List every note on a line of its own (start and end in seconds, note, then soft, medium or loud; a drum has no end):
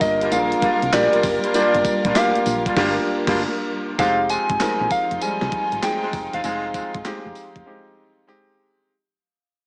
0.00 0.34 G1 medium
0.00 3.95 G3 medium
0.00 0.31 A#3 medium
0.00 0.32 D4 medium
0.00 0.32 F4 medium
0.00 3.95 F4 medium
0.00 0.94 G4 medium
0.00 0.26 A#4 medium
0.00 3.95 A#4 medium
0.00 0.34 D#5 medium
0.00 kick medium
0.00 open hi-hat medium
0.00 tambourine medium
0.21 0.34 G3 medium
0.21 0.34 A#3 medium
0.21 0.34 D4 medium
0.21 0.35 F4 medium
0.21 closed hi-hat medium
0.31 0.55 A#1 loud
0.31 0.86 A#3 medium
0.31 0.86 D4 medium
0.31 0.87 F4 medium
0.31 0.41 G#4 medium
0.31 0.95 F5 loud
0.31 closed hi-hat medium
0.31 tambourine medium
0.39 0.90 A#4 medium
0.52 closed hi-hat medium
0.62 0.84 G3 medium
0.62 0.84 A#3 medium
0.62 0.84 D4 medium
0.62 0.84 F4 medium
0.62 kick loud
0.62 closed hi-hat medium
0.82 0.91 C2 medium
0.82 closed hi-hat medium
0.93 1.09 A#1 medium
0.93 1.48 A#3 medium
0.93 1.48 D4 medium
0.93 1.48 F4 medium
0.93 1.48 G4 loud
0.93 1.54 D5 medium
0.93 snare loud
0.93 clap loud
0.93 closed hi-hat medium
0.93 tambourine loud
1.13 1.26 G3 medium
1.13 1.26 A#3 medium
1.13 1.26 D4 medium
1.13 1.26 F4 medium
1.13 closed hi-hat medium
1.23 1.39 F#1 medium
1.23 kick medium
1.23 open hi-hat medium
1.23 tambourine medium
1.43 1.53 G3 medium
1.43 1.53 A#3 medium
1.43 1.53 D4 medium
1.43 1.53 F4 medium
1.43 closed hi-hat medium
1.54 1.76 G3 loud
1.54 2.09 A#3 medium
1.54 1.76 A#3 medium
1.54 1.76 D4 loud
1.54 2.09 D4 medium
1.54 1.76 F4 loud
1.54 2.09 F4 medium
1.54 2.09 G4 medium
1.54 2.18 D5 loud
1.54 closed hi-hat medium
1.54 tambourine medium
1.75 1.83 G1 loud
1.75 closed hi-hat medium
1.85 kick loud
1.85 closed hi-hat medium
1.85 tambourine medium
2.05 2.13 A#1 loud
2.05 2.18 G3 medium
2.05 2.18 A#3 medium
2.05 2.18 D4 medium
2.05 2.18 F4 medium
2.05 kick medium
2.05 closed hi-hat medium
2.15 2.70 A#3 medium
2.15 2.70 D4 medium
2.15 2.70 F4 medium
2.15 2.71 G4 medium
2.15 2.77 F5 medium
2.15 snare loud
2.15 clap medium
2.15 closed hi-hat medium
2.15 tambourine medium
2.36 closed hi-hat medium
2.46 2.69 A#1 loud
2.46 open hi-hat medium
2.46 tambourine medium
2.66 2.75 G3 medium
2.66 2.75 A#3 medium
2.66 2.75 D4 medium
2.66 2.75 F4 medium
2.66 kick loud
2.66 closed hi-hat medium
2.76 2.99 G1 loud
2.76 2.93 G3 loud
2.76 2.93 A#3 loud
2.76 2.99 A#3 loud
2.76 2.93 D4 loud
2.76 2.99 D4 loud
2.76 2.93 F4 loud
2.76 2.99 F4 loud
2.76 2.99 G4 medium
2.76 kick loud
2.76 snare loud
2.76 crash medium
3.27 3.47 G1 loud
3.27 3.41 G3 loud
3.27 3.42 A#3 loud
3.27 3.42 D4 medium
3.27 3.42 F4 loud
3.27 kick loud
3.27 snare loud
3.27 crash medium
3.99 4.38 F1 loud
3.99 8.85 F3 medium
3.99 4.20 G#3 loud
3.99 4.54 G#3 medium
3.99 4.20 C4 medium
3.99 4.54 C4 medium
3.99 8.85 D#4 medium
3.99 4.20 D#4 medium
3.99 4.54 D#4 medium
3.99 8.85 F4 medium
3.99 4.21 F4 loud
3.99 4.54 G4 medium
3.99 4.32 F5 loud
3.99 kick loud
3.99 closed hi-hat medium
3.99 tambourine medium
4.29 4.51 G#3 medium
4.29 4.51 C4 medium
4.29 4.51 D#4 medium
4.29 4.51 F4 medium
4.29 4.93 G#5 loud
4.29 closed hi-hat medium
4.29 tambourine medium
4.49 4.58 G#1 medium
4.49 kick loud
4.49 closed hi-hat medium
4.60 4.69 A#1 medium
4.60 5.15 G#3 medium
4.60 5.15 C4 medium
4.60 5.15 D#4 medium
4.60 5.15 A#4 medium
4.60 snare loud
4.60 clap medium
4.60 closed hi-hat medium
4.60 tambourine medium
4.81 4.89 A#1 medium
4.91 5.22 F5 loud
4.91 kick medium
4.91 open hi-hat medium
4.91 tambourine medium
5.11 5.19 F1 medium
5.11 closed hi-hat medium
5.21 5.77 G3 medium
5.21 5.76 G#3 medium
5.21 5.76 C4 medium
5.21 5.76 D#4 medium
5.21 5.85 G#5 loud
5.21 closed hi-hat medium
5.21 tambourine medium
5.41 5.50 C2 loud
5.41 snare medium
5.52 kick loud
5.52 closed hi-hat medium
5.72 5.80 G#1 medium
5.72 closed hi-hat medium
5.82 6.37 G#3 medium
5.82 6.37 C4 medium
5.82 6.38 D#4 medium
5.82 6.38 G#4 medium
5.82 6.36 G5 loud
5.82 snare loud
5.82 clap loud
5.82 closed hi-hat medium
5.82 tambourine medium
6.03 6.16 G#3 medium
6.03 6.16 C4 medium
6.03 6.16 D#4 medium
6.03 6.16 F4 medium
6.13 6.29 F1 medium
6.13 kick medium
6.13 open hi-hat medium
6.13 tambourine medium
6.33 6.42 E1 medium
6.33 6.42 G#3 medium
6.33 6.43 C4 medium
6.33 6.43 D#4 medium
6.33 6.43 F4 medium
6.33 8.59 F5 loud
6.33 closed hi-hat medium
6.44 6.83 F1 loud
6.44 6.65 G#3 loud
6.44 6.98 G#3 medium
6.44 6.65 C4 medium
6.44 6.99 C4 medium
6.44 6.65 D#4 medium
6.44 6.99 D#4 medium
6.44 6.66 F4 loud
6.44 6.99 G#4 medium
6.44 closed hi-hat medium
6.44 tambourine medium
6.74 6.96 G#3 medium
6.74 6.96 C4 medium
6.74 6.96 D#4 medium
6.74 6.96 F4 medium
6.74 kick loud
6.74 closed hi-hat medium
6.74 tambourine medium
6.94 7.03 G#1 medium
6.94 kick medium
6.94 closed hi-hat medium
7.05 7.60 G#3 loud
7.05 7.60 C4 medium
7.05 7.60 D#4 medium
7.05 7.60 G4 loud
7.05 snare loud
7.05 clap medium
7.05 closed hi-hat medium
7.05 tambourine medium
7.26 7.33 F1 medium
7.35 open hi-hat medium
7.35 tambourine medium
7.56 7.64 F1 medium
7.56 kick loud
7.56 closed hi-hat medium
7.66 8.21 G#3 medium
7.66 8.21 C4 medium
7.66 8.21 D#4 medium
7.66 8.21 G4 medium
8.27 8.82 G#3 loud
8.27 8.82 C4 medium
8.27 8.83 D#4 medium
8.27 8.83 G4 loud